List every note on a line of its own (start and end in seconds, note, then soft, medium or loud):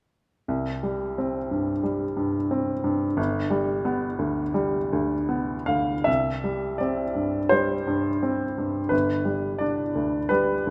0.48 1.81 C2 soft
0.83 1.37 G3 soft
1.18 1.72 C4 soft
1.51 2.04 G2 soft
1.83 2.37 G3 soft
2.17 2.71 G2 soft
2.51 3.05 C4 soft
2.84 3.18 G2 soft
3.17 4.51 G1 soft
3.50 4.05 G3 soft
3.85 4.41 B3 soft
4.19 4.77 D2 soft
4.54 5.14 G3 soft
4.93 5.53 D2 soft
5.29 5.92 B3 soft
5.66 6.07 D2 soft
5.66 6.06 F5 soft
6.04 7.48 C2 soft
6.04 6.79 E5 soft
6.44 7.02 G3 soft
6.78 7.38 C4 soft
6.78 7.51 D5 soft
7.15 7.73 G2 soft
7.49 8.09 G3 soft
7.49 8.91 C5 soft
7.87 8.44 G2 soft
8.23 8.78 C4 soft
8.58 8.92 G2 soft
8.89 10.27 G1 soft
8.89 9.60 B4 soft
9.25 9.82 G3 soft
9.59 10.17 D4 soft
9.59 10.30 D5 soft
9.95 10.53 D2 soft
10.29 10.70 G3 soft
10.29 10.70 B4 soft
10.67 10.70 D2 soft